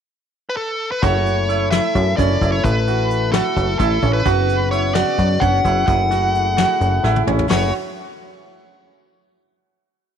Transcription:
0.49 lead electric guitar B4
0.57 lead electric guitar A4
0.92 lead electric guitar B4
1.02 analog synth bass F#1, tonewheel organ A3 E4 A4, grand piano F#4, lead electric guitar C#5, kick, closed hi-hat
1.26 closed hi-hat
1.49 grand piano E4, closed hi-hat
1.71 grand piano E4, lead electric guitar E5, snare, closed hi-hat
1.95 analog synth bass F#2, kick, closed hi-hat
2.17 analog synth bass F#1, grand piano C#4, lead electric guitar D5, kick, snare, closed hi-hat
2.41 analog synth bass F#1, grand piano E4, kick, closed hi-hat
2.52 lead electric guitar C#5
2.64 analog synth bass A1, lead electric guitar B4, kick, closed hi-hat
2.87 grand piano F#4, closed hi-hat
3.10 closed hi-hat
3.32 grand piano F#4, lead electric guitar A4, snare, closed hi-hat
3.57 analog synth bass F#1, kick, closed hi-hat
3.79 analog synth bass A1, grand piano E4, lead electric guitar A4, kick, closed hi-hat
4.03 analog synth bass A1, grand piano C#4, kick, closed hi-hat
4.13 lead electric guitar B4
4.25 analog synth bass F#1, tonewheel organ C#3 B3 F#4, grand piano F#4, kick, closed hi-hat
4.49 closed hi-hat
4.71 grand piano E4, lead electric guitar C#5, closed hi-hat
4.94 grand piano F#4, lead electric guitar D5, snare, closed hi-hat
5.18 analog synth bass F#2, kick, closed hi-hat
5.40 analog synth bass F#1, grand piano C#4, lead electric guitar F#5, kick, closed hi-hat
5.64 analog synth bass F#1, grand piano E4, kick, closed hi-hat
5.87 analog synth bass F#1, tonewheel organ A3 E4 G#4, lead electric guitar F#5, kick, closed hi-hat
6.11 grand piano F#4, snare, closed hi-hat
6.35 closed hi-hat
6.57 grand piano F#4, snare, closed hi-hat
6.80 analog synth bass F#1, closed hi-hat
7.04 analog synth bass A1, grand piano E4, snare
7.16 high tom
7.27 analog synth bass A1, grand piano C#4, mid tom
7.39 floor tom
7.50 analog synth bass F#1, tonewheel organ A3 E4 G#4, grand piano F#4, lead electric guitar C#5, snare, open hi-hat

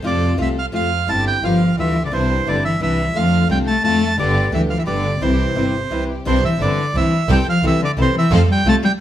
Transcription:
0.02 double bass F2, nylon-string guitar C3 F3 A3 C4 F4, string section C4 F4 A4, bandoneon D5
0.37 double bass C2, nylon-string guitar C3 F3 A3 C4 F4, string section C4 F4 A4
0.42 bandoneon E5
0.59 bandoneon F5
0.72 double bass F2, nylon-string guitar C3 F3 A3 C4 F4, string section C4 F4 A4, bandoneon F5
1.06 double bass G1, nylon-string guitar G3 C4 E4, string section C4 E4 G4, bandoneon A5
1.27 bandoneon G5
1.41 double bass G1, cello F3, nylon-string guitar G3 B3 F4, string section B3 F4 G4, bandoneon F5
1.75 double bass D2, cello E3, nylon-string guitar G3 B3 F4, string section B3 F4 G4
1.80 bandoneon E5
2.05 cello D3, bandoneon D5
2.10 double bass C2, nylon-string guitar C3 E3 G3 D4 E4, cello C3, string section C4 D4 E4, bandoneon C5
2.46 double bass G1, nylon-string guitar C3 E3 G3 D4 E4, cello D3, string section C4 D4 E4, bandoneon D5
2.65 cello E3, bandoneon E5
2.80 double bass C2, nylon-string guitar C3 E3 G3 D4 E4, cello E3, string section C4 D4 E4, bandoneon E5
3.14 double bass F2, nylon-string guitar D3 A3 C4 F4, cello F3, string section A3 D4 F4, bandoneon F5
3.48 double bass C2, nylon-string guitar D3 A3 C4 F4, cello G3, string section A3 D4 F4, bandoneon G5
3.67 cello A3, bandoneon A5
3.83 double bass F2, nylon-string guitar D3 A3 C4 F4, string section A3 D4 F4, cello A3, bandoneon A5
4.17 double bass G1, nylon-string guitar D3 G3 B3 G4, cello D3, string section A3 B3 G4, bandoneon D5
4.52 double bass D2, nylon-string guitar D3 G3 B3 G4, cello E3, string section A3 B3 G4, bandoneon E5
4.70 cello F3, bandoneon F5
4.78 cello E3, bandoneon E5
4.86 double bass G1, nylon-string guitar D3 G3 B3 G4, cello D3, string section A3 B3 G4, bandoneon D5
5.21 double bass C2, cello C3, nylon-string guitar C3 E3 G3 C4 E4, string section C4 E4 G4, bandoneon C5
5.55 double bass G1, nylon-string guitar C3 E3 G3 C4 E4, string section C4 E4 G4
5.90 double bass C2, nylon-string guitar C3 E3 G3 C4 E4, string section C4 E4 G4
6.25 double bass C2, nylon-string guitar C3 E3 G3 D4 E4, cello C3, string section D4 E4 C5, bandoneon C5
6.44 cello E3, bandoneon E5
6.60 double bass G1, nylon-string guitar C3 E3 G3 D4 E4, cello D3, string section D4 E4 C5, bandoneon D5
6.95 double bass C2, nylon-string guitar C3 E3 G3 D4 E4, cello E3, string section D4 E4 C5, bandoneon E5
7.28 double bass C2, nylon-string guitar C3 E3 G3 C4 E4 A4, cello G3, string section C4 G4 A4, bandoneon G5
7.48 cello F3, bandoneon F5
7.63 double bass C2, nylon-string guitar C3 E3 G3 C4 E4 A4, cello E3, string section C4 G4 A4
7.67 bandoneon E5
7.82 cello D3, bandoneon D5
7.97 double bass C2, nylon-string guitar C3 E3 G3 C4 E4 A4, cello C3, string section C4 G4 A4
8.02 bandoneon C5
8.16 cello E3, bandoneon E5
8.31 double bass F2, nylon-string guitar C3 F3 A3 C4 F4, cello F3, string section C4 F4 A4
8.35 bandoneon F5
8.49 cello G3, bandoneon G5
8.65 double bass C2, nylon-string guitar C3 F3 A3 C4 F4, cello A3, string section C4 F4 A4, bandoneon A5
8.83 cello G3, bandoneon G5

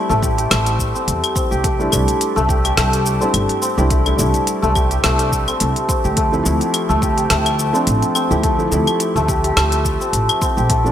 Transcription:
Already playing: felt piano G3 A3 C4 E4, santur C4 G4
0.09 upright bass A1, santur A3, shaker
0.22 santur G4, kick, shaker
0.38 santur G4, closed hi-hat, shaker
0.50 upright bass A1, santur A3, snare, closed hi-hat, claves, shaker
0.66 closed hi-hat, shaker
0.79 kick, shaker
0.94 santur C4, shaker
1.08 upright bass E2, closed hi-hat, shaker
1.24 closed hi-hat, claves, shaker
1.35 santur C4, kick, shaker
1.51 upright bass C2, santur G4, shaker
1.64 santur A3, kick, closed hi-hat, shaker
1.79 felt piano G3 A3 D4 E4, shaker
1.90 upright bass C2, felt piano G3 A3 D4 E4, claves, shaker
2.08 closed hi-hat, shaker
2.21 closed hi-hat, shaker
2.36 upright bass C2, santur A3, shaker
2.48 santur G4, kick, shaker
2.64 santur G4, closed hi-hat, claves, shaker
2.77 upright bass C2, santur A3, snare, closed hi-hat, shaker
2.93 closed hi-hat, shaker
3.06 shaker
3.21 felt piano G3 A3 D4 E4, santur C4, shaker
3.34 upright bass G1, closed hi-hat, claves, shaker
3.49 closed hi-hat, shaker
3.62 santur C4, shaker
3.77 upright bass C2, felt piano G3 A3 D4 E4, santur G4, shaker
3.90 santur A3, kick, closed hi-hat, shaker
4.06 felt piano G3 A3 D4 E4, closed hi-hat, claves, shaker
4.16 upright bass C2, felt piano G3 A3 D4, shaker
4.20 felt piano E4
4.34 closed hi-hat, shaker
4.47 closed hi-hat, shaker
4.62 upright bass C2, santur A3, shaker
4.75 santur G4, kick, claves, shaker
4.91 santur G4, closed hi-hat, shaker
5.03 upright bass C2, santur A3, snare, closed hi-hat, shaker
5.19 closed hi-hat, shaker
5.32 kick, shaker
5.48 santur C4, closed hi-hat, claves, shaker
5.60 upright bass C2, closed hi-hat, shaker
5.76 closed hi-hat, shaker
5.88 santur C4, kick, shaker
6.04 upright bass D2, santur G4, shaker
6.17 santur A3, kick, closed hi-hat, shaker
6.32 felt piano F3 A3 C4 E4, shaker
6.43 upright bass D2, felt piano F3 A3 C4 E4, shaker
6.61 closed hi-hat, shaker
6.74 closed hi-hat, claves, shaker
6.89 upright bass D2, santur A3, shaker
7.02 santur G4, kick, shaker
7.17 santur G4, closed hi-hat, shaker
7.30 upright bass D2, santur A3, snare, closed hi-hat, shaker
7.46 closed hi-hat, claves, shaker
7.59 shaker
7.73 felt piano F3 A3 C4 D4, santur C4, shaker
7.87 upright bass A1, closed hi-hat, shaker
8.03 closed hi-hat, shaker
8.15 santur C4, claves, shaker
8.30 upright bass D2, felt piano F3 A3 C4 E4, santur G4, shaker
8.43 santur A3, kick, closed hi-hat, shaker
8.58 felt piano F3 A3 C4 E4, shaker
8.70 upright bass D2, felt piano F3 A3 C4, shaker
8.74 felt piano E4
8.87 closed hi-hat, claves, shaker
9.00 closed hi-hat, shaker
9.16 upright bass D2, santur A3, shaker
9.28 santur G4, kick, shaker
9.44 santur G4, closed hi-hat, shaker
9.56 upright bass D2, santur A3, snare, closed hi-hat, claves, shaker
9.72 closed hi-hat, shaker
9.85 kick, shaker
10.00 santur C4, shaker
10.13 upright bass A1, closed hi-hat, shaker
10.29 closed hi-hat, claves, shaker
10.41 santur C4, kick, shaker
10.57 upright bass A#1, santur G4, shaker
10.69 santur A3, kick, closed hi-hat, shaker
10.84 felt piano F3 A3 C4 D4, shaker

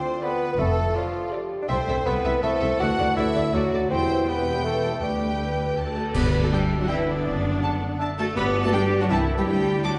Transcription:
Already playing: harp D3 A3 F4 A4 F5, bassoon C4, viola section F4 A4, french horn section F4, cor anglais C5, clarinet C5, violin section C5 D5
0.06 harp A5
0.15 harp F5
0.22 bassoon B3, viola section F4 A4, harp A4, cor anglais B4, clarinet B4, violin section B4 D5
0.33 harp F4
0.42 harp A3
0.51 bassoon B3, harp D4
0.58 double bass section F1, cello section F2, harp F3, bassoon A3, clarinet A4, violin section A4, cor anglais A4, french horn section A4
0.69 harp D4
0.95 bassoon F3, clarinet F4, cor anglais F4, viola section F4 A4, violin section F4 D5, harp D5
1.06 harp A5
1.15 harp D5
1.24 harp A5
1.31 viola section F4 A4, french horn section G4, violin section D5, harp D5
1.43 harp A4
1.52 harp D4
1.61 harp A3, bassoon D4
1.68 double bass section C2, cello section C2, harp C3, bassoon C4, viola section E4 A4, french horn section A4, cor anglais C5, clarinet C5, violin section C5 E5
1.80 harp A3
1.87 cello section C2, double bass section C2, viola section E4 A4, harp E4, violin section E5
1.98 harp A4
2.05 double bass section C2, cello section C2, bassoon B3, viola section E4 A4, harp E4, cor anglais B4, clarinet B4, violin section B4 E5
2.16 harp E5
2.24 double bass section C2, cello section C2, viola section E4 A4, violin section E5, harp A5
2.35 harp E5
2.42 cello section C2, double bass section C2, bassoon A3, viola section E4 A4, cor anglais A4, violin section A4 E5, clarinet A4, harp A4, french horn section C5
2.53 harp E4
2.61 cello section C2, double bass section C2, harp A3, viola section E4 A4, violin section E5
2.71 harp C4
2.79 cello section D2, double bass section D2, harp D3, bassoon F#4, viola section F#4 A4, french horn section B4, violin section D5 F#5, clarinet F#5, cor anglais F#5
2.89 harp D4
2.99 cello section D2, double bass section D2, viola section F#4 A4, violin section D5
3.08 harp D4
3.16 cello section D2, double bass section D2, bassoon E4, viola section F#4 A4, french horn section A4, harp D5, violin section D5 E5, cor anglais E5, clarinet E5
3.27 harp A5
3.35 cello section D2, double bass section D2, viola section F#4 A4, violin section D5, harp D5
3.53 cello section D2, double bass section D2, bassoon F#3, french horn section F#4, violin section F#4 D5, viola section F#4 A4, cor anglais F#4, clarinet F#4, harp D5
3.64 harp A4
3.72 cello section D2, double bass section D2, viola section F#4 A4, violin section D5
3.82 harp A3
3.90 double bass section E1, cello section E2, harp E3, bassoon C4, french horn section E4, viola section G4, cor anglais C5, clarinet C5, violin section C5 G5
4.01 harp B3
4.10 harp E4
4.18 harp G4
4.27 bassoon B3, viola section G4, french horn section G4, violin section B4 G5, clarinet B4, cor anglais B4
4.38 harp E5
4.47 harp G5
4.56 harp E5
4.63 bassoon A3, french horn section A4, violin section A4, clarinet A4, cor anglais A4, harp B4
4.75 harp G4
4.85 harp E4
4.94 bassoon A3, harp B3
5.02 cello section D2, double bass section D2, harp D3, bassoon G3, violin section G4 G5, clarinet G4, viola section G4 B4, cor anglais G4, french horn section B4
5.31 harp B3
5.40 harp B4
5.50 harp G5
5.59 harp B4
5.69 harp G5
5.77 cello section D2, double bass section D2, harp D3, viola section F#4 A4, violin section A5
5.88 harp A3
5.95 french horn section A3, cello section A3, clarinet F#4, viola section A4, violin section A5
6.06 harp F#4
6.13 double bass section G1, harp G2, french horn section B3, cello section B3, clarinet G4, viola section B4, cor anglais D5, violin section B5, concert bass drum, crash
6.34 harp D4
6.42 french horn section A3, cello section A3, clarinet F#4, viola section A4, violin section A5
6.51 french horn section G3, cello section G3, clarinet D4, bassoon D4, viola section G4, cor anglais E5, violin section G5, flute G5
6.71 harp D4
6.80 cello section F#3, french horn section F#3, clarinet D4, viola section F#4, violin section F#5
6.88 cello section E3, french horn section E3, clarinet C4, bassoon D4, viola section E4, harp B4, violin section E5 G5, flute G5
7.07 cello section D3, french horn section D3, clarinet B3, harp D4, viola section D4, violin section D5
7.25 double bass section F#1, harp F#2, cor anglais D5
7.45 harp D4
7.62 harp A3, bassoon D4, cor anglais F#5, flute A5, violin section A5
7.82 harp D4
7.99 bassoon D4, harp A4, cor anglais E5, flute A5, violin section A5
8.18 cello section A3, french horn section A3, harp D4, clarinet F#4, viola section A4, violin section A5
8.36 double bass section G1, harp G2, cello section B3, french horn section B3, clarinet G4, viola section B4, cor anglais D5, violin section B5
8.56 harp D4
8.62 cello section A3, clarinet F#4, viola section A4, violin section A5
8.67 french horn section A3
8.73 cello section G3, french horn section G3, clarinet D4, bassoon D4, viola section G4, flute G5, violin section G5
8.92 harp D4
9.01 cello section F#3, french horn section F#3, clarinet D4, viola section F#4, violin section F#5
9.09 double bass section C2, harp C3, cello section E3, french horn section E3, clarinet C4, viola section E4, bassoon E4, violin section E5 A5, cor anglais E5, flute A5
9.29 harp E4 A4
9.38 cello section G3, french horn section G3, clarinet E4, viola section G4, violin section G5
9.47 double bass section D2, harp D3, cello section G3, french horn section G3, clarinet E4, viola section G4, cor anglais D5, violin section G5
9.66 harp A4
9.84 cello section F#3, french horn section F#3, bassoon D4, harp D4, clarinet D4, viola section F#4, violin section F#5 D6, flute A5

